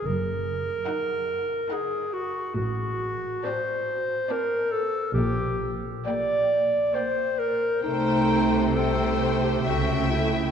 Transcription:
<<
  \new Staff \with { instrumentName = "Violin section" } { \time 3/4 \key ees \minor \tempo 4 = 69 r4 bes''4 bes''4 | \key g \minor r4 a''4 a''4 | r4 g''4 g''4 | g''4 g''4 g''4 | }
  \new Staff \with { instrumentName = "Violin section" } { \time 3/4 \key ees \minor r4 ges''4 ges''4 | \key g \minor r4 d''4 d''4 | r4 d''4 d''4 | c''4 c''4 e''4 | }
  \new Staff \with { instrumentName = "Clarinet" } { \time 3/4 \key ees \minor bes'2 aes'8 ges'8 | \key g \minor fis'4 c''4 bes'8 a'8 | g'8. r16 d''4 c''8 bes'8 | ees'4 a'8. g'16 fis'8 e'8 | }
  \new Staff \with { instrumentName = "Viola section" } { \time 3/4 \key ees \minor r4 ees'4 ees'4 | \key g \minor r4 c'4 c'4 | r4 bes4 bes4 | a4 a4 a4 | }
  \new Staff \with { instrumentName = "Cello section" } { \clef bass \time 3/4 \key ees \minor ges,4 r2 | \key g \minor a,4 r2 | bes,4 r2 | c2 cis4 | }
  \new Staff \with { instrumentName = "Double bass section" } { \clef bass \time 3/4 \key ees \minor ges,,4 r2 | \key g \minor a,,4 r2 | bes,,4 r2 | c,2 cis,4 | }
>>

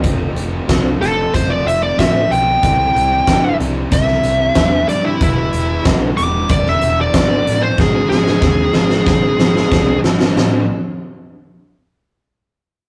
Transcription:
<<
  \new Staff \with { instrumentName = "Lead electric guitar" } { \time 4/4 \key a \minor \tempo 4 = 93 r4. a'8 c''16 d''16 e''16 d''16 e''8 g''8~ | g''4. r8 e''4. d''16 e'16 | e'4 r8 d'''8 d''16 e''8 d''4 c''16 | gis'8 gis'2. r8 |
r1 | }
  \new Staff \with { instrumentName = "Clean electric guitar" } { \time 4/4 \key a \minor <f, c f a c'>8. <f a c'>16 <f, c f a c'>8 <c f a c'>8 <c f a c'>8 <c f a c'>8 <f, f a c'>8 <f a c'>16 <f a c'>16 | <c g c' e'>8. <g c' e'>16 <c g c' e'>8 <c g c' e'>8 <c g c' e'>8 <c g c' e'>8 <c g c' e'>8 <c g c' e'>16 <g c' e'>16 | r1 | r1 |
r1 | }
  \new Staff \with { instrumentName = "Distorted electric guitar" } { \time 4/4 \key a \minor <f a c' f'>4 <f a c' f'>8 <f a c' f'>8 <f a c' f'>4 <f a c' f'>8 <f a c' f'>8 | <c e g c' e'>4 <c e g c' e'>8 <c e g c' e'>8 <c e g c' e'>4 <c e g c' e'>8 <c e g c' e'>8 | <e gis b e'>4 <e gis b e'>8 <e gis b e'>8 <e gis b e'>4 <e gis b e'>8 <e gis b e'>8 | <gis, dis gis bis dis'>4 <gis, dis gis bis dis'>8 <gis, dis gis bis dis'>8 <gis, dis gis bis dis'>4 <gis, dis gis bis dis'>8 <gis, dis gis bis dis'>8 |
<a, e a c' e'>8 r2. r8 | }
  \new Staff \with { instrumentName = "Picked electric bass" } { \clef bass \time 4/4 \key a \minor f,,8 f,,8 c,8 f,,8 f,,8 f,,8 a,,8 b,,8 | c,8 c,8 g,,8 c,8 c,8 c,8 e,8 g,8 | e,,8 e,,8 b,,8 e,,8 e,,8 e,,8 gis,,8 a,,8 | gis,,8 gis,,8 dis,8 gis,,8 gis,,8 gis,,8 bis,,8 gis,,8 |
a,,8 r2. r8 | }
  \new DrumStaff \with { instrumentName = "Drums" } \drummode { \time 4/4 <hh bd>8 hh8 <hh bd sn>8 hh8 <hh bd>8 hh8 <hh bd sn>8 hh8 | <hh bd>8 hh8 <hh bd sn>8 hh8 <hh bd>16 sn16 hh8 <hh bd sn>8 hh8 | <hh bd>8 hh8 <hh bd sn>8 hh8 <hh bd>16 sn16 hh8 <hh bd sn>8 hh8 | <bd sn>8 sn16 sn16 <bd sn>8 sn16 sn16 <bd sn>8 sn16 sn16 <bd sn>8 sn16 sn16 |
sn4 r4 r4 r4 | }
>>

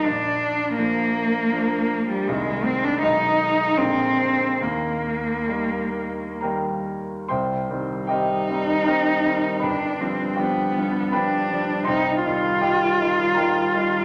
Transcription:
<<
  \new Staff \with { instrumentName = "Cello" } { \time 3/4 \key ees \major \tempo 4 = 80 d'4 bes4.~ bes16 g16 | aes8 c'16 d'16 ees'4 c'4 | bes2 r4 | \key c \minor r4 ees'2 |
d'8 c'8 b4 d'4 | ees'8 f'2~ f'8 | }
  \new Staff \with { instrumentName = "Grand piano" } { \time 3/4 \key ees \major r2. | r2. | r2 <bes' g'' bes''>4 | \key c \minor <c'' g'' c'''>4 <g' ees'' g''>4 <bes' g'' bes''>4 |
<b' g'' b''>4 <g' d'' g''>4 <b' g'' b''>4 | <c'' g'' c'''>4 <g' ees'' g''>4 <bes' g'' bes''>4 | }
  \new Staff \with { instrumentName = "Grand piano" } { \clef bass \time 3/4 \key ees \major bes,,4 <f bes d'>4 <f bes d'>4 | <c, ees aes ees'>4 <ces, ees aes ees'>4 <bes,, d aes bes>4 | ees,4 <ees g bes>4 <ees g bes>4 | \key c \minor c,8 <ees g c'>8 <ees g c'>8 <ees g c'>8 <ees g c'>8 <ees g c'>8 |
g,,8 <f g d'>8 <f g d'>8 <f g d'>8 <f g d'>8 <f g d'>8 | c,8 <ees g ees'>8 <ees g ees'>8 <ees g ees'>8 <ees g ees'>8 <ees g ees'>8 | }
>>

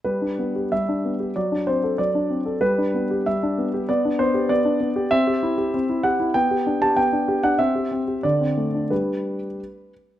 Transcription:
\new Staff \with { instrumentName = "Grand piano" } { \time 2/4 \key g \major \tempo 4 = 95 << { b'4 e''4 | d''8 c''8 d''4 | b'4 e''4 | d''8 c''8 d''4 |
e''4. fis''8 | g''8. a''16 g''8. fis''16 | e''4 d''4 | b'4. r8 | } \\ { g16 d'16 b16 g'16 g16 d'16 b16 g'16 | fis16 d'16 c'16 a'16 fis16 d'16 c'16 a'16 | g16 d'16 b16 g'16 g16 d'16 b16 g'16 | b16 d'16 b16 g'16 b16 d'16 b16 g'16 |
c'16 g'16 e'16 g'16 c'16 e'16 g'16 e'16 | b16 g'16 d'16 g'16 b16 d'16 g'16 d'16 | c'16 g'16 c'16 g'16 d16 c'16 a16 d'16 | <g d' g'>4 r4 | } >> }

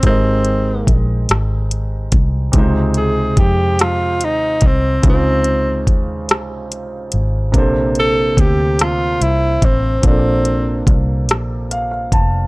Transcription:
<<
  \new Staff \with { instrumentName = "Grand piano" } { \time 6/8 \key des \lydian \tempo 4. = 48 << { r2. | r2. | r2. | r2. |
r2 f''16 f''16 a''8 | } \\ { <aes ees' g' bes' ees''>2. | <c aes ees' f' c''>2. | <des aes ees' f' c''>2. | <c bes d' a' c''>2. |
<bes, bes d' a' d''>2. | } >> }
  \new Staff \with { instrumentName = "Tenor saxophone" } { \time 6/8 \key des \lydian c'4 r2 | r8 aes'8 g'8 f'8 ees'8 c'8 | c'4 r2 | r8 a'8 g'8 f'8 fes'8 c'8 |
c'4 r2 | }
  \new Staff \with { instrumentName = "Fingered electric bass" } { \clef bass \time 6/8 \key des \lydian aes,,4 bes,,8 aes,,4 c,8 | des,4 f,4 ees,8 c,8 | des,4 ees,8 des,4 aes,,8 | bes,,4 d,4 c,8 a,,8 |
bes,,4 c,8 bes,,4 f,,8 | }
  \new DrumStaff \with { instrumentName = "Drums" } \drummode { \time 6/8 <hh bd>8 hh8 <hh bd>8 <hh ss>8 hh8 <hh bd>8 | <hh bd>8 hh8 <hh bd>8 <hh ss>8 hh8 <hh bd>8 | <hh bd>8 hh8 <hh bd>8 <hh ss>8 hh8 hh8 | <hh bd>8 hh8 <hh bd>8 <hh ss>8 hh8 <hh bd>8 |
<hh bd>8 hh8 <hh bd>8 <hh ss>8 hh8 <hh bd>8 | }
>>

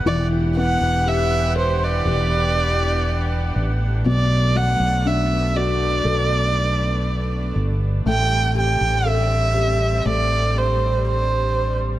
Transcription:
<<
  \new Staff \with { instrumentName = "Violin" } { \time 4/4 \key e \minor \tempo 4 = 60 d''8 fis''8 e''8 c''16 d''4.~ d''16 r8 | d''8 fis''8 e''8 d''2 r8 | g''8 g''8 e''4 d''8 c''8 c''8. r16 | }
  \new Staff \with { instrumentName = "Grand piano" } { \time 4/4 \key e \minor e8 b8 g'8 b'8 g'2 | b,8 fis8 d'8 fis'8 a'2 | a8 g'8 a'8 g'8 a2 | }
  \new Staff \with { instrumentName = "String section" } { \time 4/4 \key e \minor << { <e g' fis''>1 | <a b>1 | <g c'>1 | } \\ { <b d'>1~ | <b d'>1~ | <b d'>1 | } >> }
  \new Staff \with { instrumentName = "Fretless electric bass" } { \clef bass \time 4/4 \key e \minor e,,8. e,,4~ e,,16 e,,4. a,,8 | b,,8. b,,4~ b,,16 b,,4. g,,8 | a,,8. a,,4~ a,,16 a,,2 | }
>>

